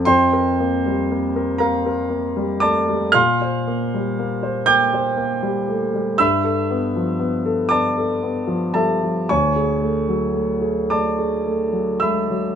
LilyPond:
<<
  \new Staff \with { instrumentName = "Grand piano" } { \time 6/8 \key g \dorian \tempo 4. = 38 <c'' g'' c'''>4. <bes' f'' bes''>4 <d'' a'' d'''>8 | <f'' c''' f'''>4. <g'' d''' g'''>4. | <e'' b'' e'''>4. <d'' a'' d'''>4 <a' e'' a''>8 | \key d \lydian <cis'' gis'' cis'''>4. <d'' a'' d'''>4 <e'' b'' e'''>8 | }
  \new Staff \with { instrumentName = "Grand piano" } { \time 6/8 \key g \dorian f,16 bes'16 bes16 g16 bes16 bes'16 bes16 bes'16 bes16 g16 a16 g16 | bes,16 c''16 bes16 g16 bes16 c''16 bes16 c''16 bes16 g16 a16 g16 | g,16 a'16 b16 f16 b16 a'16 b16 a'16 b16 f16 g16 f16 | \key d \lydian d,16 gis'16 a16 fis16 a16 gis'16 a16 gis'16 a16 fis16 gis16 fis16 | }
>>